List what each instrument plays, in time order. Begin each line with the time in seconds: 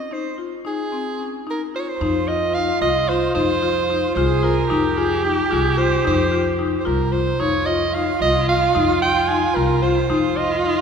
Already playing: soprano saxophone D#5
0.11 marimba D#4, soprano saxophone C5
0.38 marimba F4
0.65 marimba D#4, soprano saxophone G#4
0.92 marimba C4
1.19 marimba C#4
1.47 marimba D#4, soprano saxophone A#4
1.75 marimba F4, soprano saxophone C5
1.80 soprano saxophone C#5
1.89 soprano saxophone C5
2.00 upright bass F2, marimba D#4, viola F4
2.28 marimba F4, soprano saxophone D#5
2.54 marimba D#4, soprano saxophone F5
2.81 upright bass C2, marimba F4, soprano saxophone D#5
3.09 marimba F4, soprano saxophone C5
3.35 upright bass F2, marimba D#4, soprano saxophone C5
3.62 marimba F4
3.90 marimba D#4
4.15 upright bass C2, marimba F4, viola G#4, soprano saxophone C5
4.43 marimba F4, soprano saxophone A#4
4.70 upright bass F2, marimba D#4, viola G4
4.97 marimba F4, soprano saxophone G#4
5.23 marimba D#4, soprano saxophone G4
5.51 upright bass C2, marimba F4, soprano saxophone G#4
5.78 marimba F4, soprano saxophone C5
6.05 upright bass F2, marimba D#4, soprano saxophone C5
6.32 marimba F4
6.59 marimba D#4
6.80 soprano saxophone C5
6.85 upright bass C2, marimba F4, soprano saxophone A#4
7.12 marimba F4, soprano saxophone C5
7.40 upright bass F2, marimba D#4, viola F4, soprano saxophone C#5
7.66 marimba F4, soprano saxophone D#5
7.94 marimba D#4, soprano saxophone F5
8.20 upright bass C2, marimba F4, soprano saxophone D#5
8.48 marimba F4, soprano saxophone F5
8.75 upright bass F2, marimba D#4
9.02 marimba F4, soprano saxophone G5
9.28 marimba D#4, soprano saxophone G#5
9.56 upright bass C2, marimba F4, soprano saxophone A#4
9.82 marimba F4, soprano saxophone C5
10.10 upright bass F2, marimba D#4, viola F4
10.37 marimba F4, soprano saxophone D#5
10.64 marimba D#4, soprano saxophone D#5